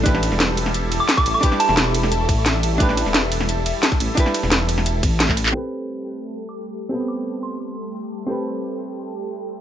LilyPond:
<<
  \new Staff \with { instrumentName = "Synth bell" } { \time 4/4 \key a \minor \tempo 4 = 175 r2 r8. d'''8 d'''8 d'''16~ | d'''8 a''16 a''16 r2. | r1 | r1 |
r2 r8. d'''8 r8. | r8 d'''8 r8 c'''4. r4 | r1 | }
  \new Staff \with { instrumentName = "Hollow-body jazz guitar" } { \time 4/4 \key a \minor <d' e' g' b'>2~ <d' e' g' b'>8 r4. | <d' e' g' b'>2~ <d' e' g' b'>8 r4. | <d' e' g' b'>2~ <d' e' g' b'>8 r4. | <d' e' g' b'>2~ <d' e' g' b'>8 r4. |
<c' g' a' b'>2~ <c' g' a' b'>8 r4. | <b c' g' a'>2~ <b c' g' a'>8 r4. | <c' g' a' b'>2~ <c' g' a' b'>8 r4. | }
  \new Staff \with { instrumentName = "Analog synth pad" } { \time 4/4 \key a \minor <g e' a'>1~ | <g e' a'>1~ | <g e' a'>1~ | <g e' a'>1 |
<g a g' a'>1~ | <g a g' a'>1~ | <g a g' a'>1 | }
  \new Staff \with { instrumentName = "Detuned saw bass" } { \clef bass \time 4/4 \key a \minor a,,8. e,,2 r8. a,,16 r16 | r8. e,,4.~ e,,16 a,,4. | a,,8. e,,2 r8. a,,16 r16 | r8. e,,4.~ e,,16 a,,4. |
r1 | r1 | r1 | }
  \new DrumStaff \with { instrumentName = "Drums" } \drummode { \time 4/4 <hh bd>16 sn16 <hh cymr>16 sn16 <hh sn>8 <hh cymr>16 sn16 hh8 <hh cymr>8 <hh sn>16 bd16 <hh cymr>8 | <hh bd>16 sn16 <hh cymr>16 sn16 <hh sn>8 <hh cymr>16 sn16 hh8 <hh bd cymr>8 <hh sn>8 <hh cymr>8 | <hh bd>16 sn16 <hh cymr>16 sn16 <hh sn>8 <hh cymr>16 sn16 hh8 <hh cymr>8 <hh sn>16 bd16 <hh cymr>8 | <hh bd>16 sn16 <hh cymr>16 sn16 <hh sn>8 <hh cymr>16 sn16 hh8 <hh bd cymr>8 <hh sn>16 <hc bd>16 <hh cymr>16 hc16 |
r4 r4 r4 r4 | r4 r4 r4 r4 | r4 r4 r4 r4 | }
>>